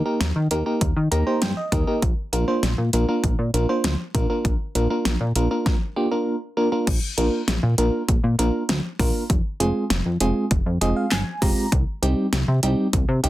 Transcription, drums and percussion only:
0.21 snare loud
0.21 closed hi-hat medium
0.51 closed hi-hat medium
0.81 kick medium
0.81 closed hi-hat medium
1.12 closed hi-hat medium
1.42 snare loud
1.42 closed hi-hat medium
1.72 kick medium
1.72 closed hi-hat medium
2.02 kick loud
2.02 closed hi-hat medium
2.33 closed hi-hat medium
2.63 snare loud
2.63 closed hi-hat medium
2.93 closed hi-hat medium
3.24 kick medium
3.24 closed hi-hat medium
3.54 closed hi-hat medium
3.84 snare loud
3.84 closed hi-hat medium
4.15 kick loud
4.15 closed hi-hat medium
4.45 kick loud
4.45 closed hi-hat medium
4.75 closed hi-hat medium
5.05 snare loud
5.05 closed hi-hat medium
5.36 closed hi-hat medium
5.66 kick loud
5.66 snare medium
6.87 kick loud
6.87 closed hi-hat medium
6.87 crash medium
7.18 closed hi-hat medium
7.48 snare loud
7.48 closed hi-hat medium
7.78 closed hi-hat medium
8.09 kick medium
8.09 closed hi-hat medium
8.39 closed hi-hat medium
8.69 snare loud
8.69 closed hi-hat medium
8.99 kick loud
8.99 open hi-hat medium
9.30 kick loud
9.30 closed hi-hat medium
9.60 closed hi-hat medium
9.90 snare loud
9.90 closed hi-hat medium
10.20 closed hi-hat medium
10.51 kick medium
10.51 closed hi-hat medium
10.81 closed hi-hat medium
11.11 snare loud
11.11 clap medium
11.11 closed hi-hat medium
11.42 kick loud
11.42 open hi-hat medium
11.72 kick loud
11.72 closed hi-hat medium
12.03 closed hi-hat medium
12.33 snare loud
12.33 closed hi-hat medium
12.63 closed hi-hat medium
12.93 kick medium
12.93 closed hi-hat medium
13.24 closed hi-hat medium

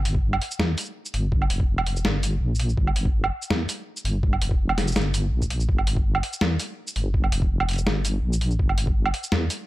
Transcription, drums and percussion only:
0.05 closed hi-hat medium
0.15 kick loud
0.33 low woodblock medium
0.42 closed hi-hat medium
0.51 shaker medium
0.60 snare loud
0.78 closed hi-hat medium
0.78 shaker medium
0.80 shaker medium
0.82 shaker soft
0.85 shaker soft
1.05 shaker medium
1.14 closed hi-hat medium
1.32 kick loud
1.42 low woodblock soft
1.50 closed hi-hat medium
1.60 kick loud
1.78 low woodblock medium
1.86 closed hi-hat medium
1.96 shaker medium
2.05 snare loud
2.23 closed hi-hat medium
2.23 shaker medium
2.55 shaker medium
2.59 closed hi-hat medium
2.69 shaker soft
2.77 kick loud
2.87 low woodblock soft
2.96 closed hi-hat medium
3.05 kick loud
3.24 low woodblock medium
3.42 shaker medium
3.50 snare loud
3.69 closed hi-hat medium
3.69 shaker medium
3.97 shaker medium
4.05 closed hi-hat medium
4.23 kick loud
4.33 low woodblock soft
4.42 closed hi-hat medium
4.51 kick loud
4.69 low woodblock medium
4.78 snare medium
4.78 closed hi-hat medium
4.87 shaker medium
4.92 shaker soft
4.96 snare loud
4.96 closed hi-hat soft
5.01 shaker soft
5.14 closed hi-hat medium
5.14 shaker medium
5.42 kick medium
5.42 shaker medium
5.50 closed hi-hat medium
5.60 shaker soft
5.69 kick loud
5.78 low woodblock soft
5.87 closed hi-hat medium
5.97 kick loud
6.15 low woodblock medium
6.23 closed hi-hat medium
6.33 shaker medium
6.41 snare loud
6.60 closed hi-hat medium
6.60 shaker medium
6.87 shaker medium
6.96 closed hi-hat medium
7.14 kick loud
7.24 low woodblock soft
7.32 closed hi-hat medium
7.42 kick loud
7.60 low woodblock medium
7.69 closed hi-hat medium
7.71 closed hi-hat soft
7.73 closed hi-hat soft
7.76 closed hi-hat soft
7.76 shaker medium
7.87 snare loud
8.05 closed hi-hat medium
8.05 shaker medium
8.33 shaker medium
8.41 closed hi-hat medium
8.51 shaker soft
8.59 kick loud
8.69 low woodblock soft
8.78 closed hi-hat medium
8.87 kick loud
9.06 low woodblock medium
9.14 closed hi-hat medium
9.23 shaker medium
9.32 snare loud
9.50 closed hi-hat medium
9.50 shaker medium

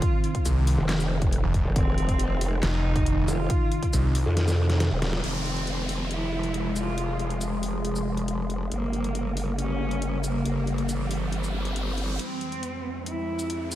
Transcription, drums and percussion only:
0.02 kick loud
0.02 closed hi-hat medium
0.24 closed hi-hat medium
0.35 kick medium
0.35 closed hi-hat medium
0.46 closed hi-hat medium
0.46 shaker medium
0.67 open hi-hat loud
0.89 snare loud
0.89 clap medium
0.89 closed hi-hat medium
1.00 shaker medium
1.22 kick loud
1.22 closed hi-hat medium
1.33 closed hi-hat medium
1.54 kick medium
1.54 closed hi-hat medium
1.76 kick loud
1.76 closed hi-hat medium
1.98 closed hi-hat medium
2.09 kick medium
2.09 closed hi-hat medium
2.19 closed hi-hat medium
2.41 open hi-hat loud
2.63 snare loud
2.63 clap medium
2.63 closed hi-hat medium
2.96 kick loud
2.96 closed hi-hat medium
3.06 closed hi-hat medium
3.28 closed hi-hat medium
3.28 shaker medium
3.50 kick loud
3.50 closed hi-hat medium
3.72 closed hi-hat medium
3.83 kick medium
3.83 closed hi-hat medium
3.93 closed hi-hat medium
3.93 shaker medium
4.15 open hi-hat loud
4.37 snare medium
4.37 closed hi-hat medium
4.48 snare medium
4.48 shaker medium
4.70 snare medium
4.70 closed hi-hat medium
4.80 snare medium
4.80 closed hi-hat medium
5.02 snare loud
5.02 closed hi-hat medium
5.13 snare loud
5.24 closed hi-hat medium
5.46 closed hi-hat soft
5.57 closed hi-hat soft
5.67 closed hi-hat medium
5.89 open hi-hat medium
6.11 closed hi-hat medium
6.43 closed hi-hat soft
6.54 closed hi-hat medium
6.76 closed hi-hat medium
6.76 shaker medium
6.98 closed hi-hat medium
7.19 closed hi-hat soft
7.30 closed hi-hat soft
7.41 closed hi-hat medium
7.41 shaker medium
7.63 open hi-hat medium
7.85 closed hi-hat medium
7.96 shaker soft
8.17 closed hi-hat soft
8.28 closed hi-hat medium
8.50 closed hi-hat medium
8.72 closed hi-hat medium
8.93 closed hi-hat soft
9.04 closed hi-hat soft
9.15 closed hi-hat medium
9.37 open hi-hat medium
9.59 closed hi-hat medium
9.91 closed hi-hat soft
10.02 closed hi-hat medium
10.24 closed hi-hat medium
10.24 shaker medium
10.45 closed hi-hat medium
10.67 closed hi-hat soft
10.78 closed hi-hat soft
10.89 closed hi-hat medium
10.89 shaker medium
11.11 open hi-hat medium
11.32 closed hi-hat medium
11.43 shaker medium
11.65 closed hi-hat soft
11.76 closed hi-hat medium
11.98 closed hi-hat soft
12.19 closed hi-hat medium
12.41 closed hi-hat medium
12.52 closed hi-hat medium
12.63 closed hi-hat medium
13.06 closed hi-hat medium
13.39 closed hi-hat soft
13.39 shaker medium
13.50 closed hi-hat medium
13.72 closed hi-hat medium
13.72 shaker medium

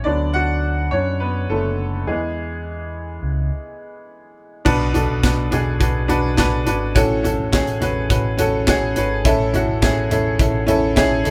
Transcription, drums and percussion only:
4.66 kick medium
4.66 crash medium
4.94 closed hi-hat medium
4.94 floor tom medium
5.24 kick medium
5.24 snare medium
5.24 clap medium
5.24 closed hi-hat medium
5.52 closed hi-hat medium
5.52 floor tom medium
5.81 kick medium
5.81 closed hi-hat medium
6.10 closed hi-hat medium
6.10 floor tom medium
6.38 kick loud
6.38 snare medium
6.38 clap medium
6.38 closed hi-hat medium
6.67 closed hi-hat medium
6.96 kick loud
6.96 closed hi-hat medium
7.25 closed hi-hat medium
7.25 floor tom medium
7.53 kick loud
7.53 snare medium
7.53 clap medium
7.53 closed hi-hat medium
7.67 closed hi-hat soft
7.82 closed hi-hat medium
7.82 floor tom medium
8.10 kick medium
8.10 closed hi-hat medium
8.39 closed hi-hat medium
8.39 floor tom medium
8.67 kick medium
8.67 snare medium
8.67 clap medium
8.67 closed hi-hat medium
8.96 closed hi-hat medium
9.25 kick loud
9.25 closed hi-hat medium
9.54 closed hi-hat medium
9.54 floor tom medium
9.83 kick medium
9.83 snare loud
9.83 clap medium
9.83 closed hi-hat medium
10.11 closed hi-hat medium
10.11 floor tom medium
10.39 kick loud
10.39 closed hi-hat medium
10.68 closed hi-hat medium
10.68 floor tom medium
10.97 kick medium
10.97 snare medium
10.97 clap medium
10.97 closed hi-hat medium
11.25 closed hi-hat medium

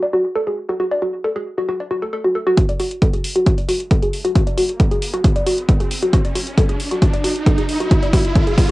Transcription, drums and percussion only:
2.58 kick loud
2.58 closed hi-hat loud
2.69 closed hi-hat medium
2.80 open hi-hat loud
2.91 closed hi-hat medium
3.02 kick loud
3.02 closed hi-hat medium
3.14 closed hi-hat medium
3.24 open hi-hat loud
3.36 closed hi-hat medium
3.46 kick loud
3.46 closed hi-hat loud
3.58 closed hi-hat medium
3.69 open hi-hat loud
3.80 closed hi-hat medium
3.91 kick loud
3.91 closed hi-hat medium
4.02 closed hi-hat medium
4.13 open hi-hat loud
4.25 closed hi-hat medium
4.35 kick loud
4.35 closed hi-hat loud
4.47 closed hi-hat medium
4.58 open hi-hat loud
4.69 closed hi-hat medium
4.80 kick loud
4.80 closed hi-hat medium
4.91 closed hi-hat medium
5.02 open hi-hat loud
5.14 closed hi-hat medium
5.24 kick loud
5.24 closed hi-hat loud
5.36 closed hi-hat medium
5.47 open hi-hat loud
5.58 closed hi-hat medium
5.69 kick loud
5.69 closed hi-hat loud
5.80 closed hi-hat medium
5.91 open hi-hat loud
6.03 closed hi-hat medium
6.13 kick loud
6.13 closed hi-hat loud
6.25 closed hi-hat medium
6.35 open hi-hat loud
6.47 closed hi-hat medium
6.58 kick loud
6.58 closed hi-hat medium
6.69 closed hi-hat medium
6.80 open hi-hat loud
6.91 closed hi-hat medium
7.02 kick loud
7.02 closed hi-hat loud
7.14 closed hi-hat medium
7.24 open hi-hat loud
7.36 closed hi-hat medium
7.46 kick loud
7.46 closed hi-hat medium
7.58 closed hi-hat medium
7.69 open hi-hat loud
7.80 closed hi-hat medium
7.91 kick loud
7.91 closed hi-hat medium
8.03 closed hi-hat medium
8.13 kick loud
8.13 open hi-hat loud
8.25 closed hi-hat medium
8.35 kick loud
8.35 closed hi-hat medium
8.47 closed hi-hat medium
8.58 kick loud
8.58 open hi-hat loud

